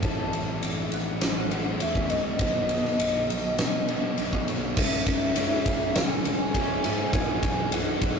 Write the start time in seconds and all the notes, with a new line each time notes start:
0.02 A1 A2 E3 A3 C4 E4 A4 A5, kick, ride
0.33 A1, ride
0.62 A1, ride
0.92 F#5, ride
1.21 A1, snare, ride
1.50 A1 A2 E3 A3 C4 E4 A4, ride
1.80 E2 A2 E3 A3 C4 E4 A4 E5, ride
1.95 kick
2.10 C2 D#5, ride
2.39 B1 B2 D#3 F#3 B3 D#4 A4, kick, ride
2.69 B2, ride
2.85 snare
3.00 B1, ride
3.30 B1, ride
3.58 B2, snare, ride
3.88 B2 D#3 F#3 B3 D#4 A4, ride
4.18 B1 B2 D#3 F#3 B3 D#4 A4, ride
4.33 kick
4.48 ride
4.77 C#2 C#3 G#3 C#4 E4 E5, kick, crash
5.06 C#2, kick, ride
5.36 C#2 C#3 G#3 C#4 E4, ride
5.66 C#3, kick, ride
5.95 C#2 G#5, snare, ride
6.25 C#2, ride
6.54 C#2 C#3 G#3 C#4 E4, kick, ride
6.84 G#2 G#3 C#4 E4, snare, ride
7.12 B1 B2 E3 F#3 B3 E4 G#5, kick, ride
7.43 B1, kick, ride
7.72 B1 E3 F#3 B3 E4 F#5, ride
8.01 B1, kick, ride